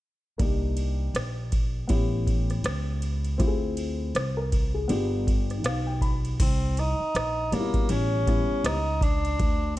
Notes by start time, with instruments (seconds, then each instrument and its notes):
0.38 upright bass C2, upright piano A#3 D4 D#4 G4, kick, ride
0.77 ride
1.14 upright bass A#1, cross-stick, hi-hat pedal, ride
1.52 kick, ride
1.88 upright bass A1, upright piano B3 C#4 E4 G4, kick, ride
2.27 kick, ride
2.50 cross-stick, ride
2.64 upright bass C#2, cross-stick, hi-hat pedal, ride
3.02 ride
3.24 ride
3.38 upright bass D2, upright piano C4 E4 F4 G4, kick, ride
3.47 upright piano G#4
3.77 ride
4.15 upright bass C2, upright piano C5, cross-stick, hi-hat pedal, ride
4.37 upright piano A#4
4.52 kick, ride
4.74 upright piano G#4
4.88 upright bass G1, upright piano B3 D4 F4 G4, ride
5.27 kick, ride
5.50 cross-stick, ride
5.64 upright bass B1, upright piano F5, cross-stick, hi-hat pedal, ride
5.87 upright piano G5
6.01 upright piano B5, kick, ride
6.25 ride
6.40 upright bass C2, tenor saxophone C4, kick, crash, ride
6.77 tenor saxophone D#4, cross-stick, ride
7.00 muted upright bass stroke
7.15 upright bass A#1, cross-stick, hi-hat pedal, ride
7.52 upright bass G1, upright piano B2 G3 C#4 D#4, tenor saxophone A#3, cross-stick, ride
7.60 upright piano E4
7.74 kick, ride
7.89 upright bass A1, tenor saxophone C#4, ride
8.27 upright piano G3 B3 C#4 E4, kick, cross-stick, ride
8.49 muted upright bass stroke
8.64 upright bass C#2, tenor saxophone D#4, cross-stick, hi-hat pedal, ride
9.01 tenor saxophone D4, kick, ride
9.25 ride
9.39 upright bass D2, kick, ride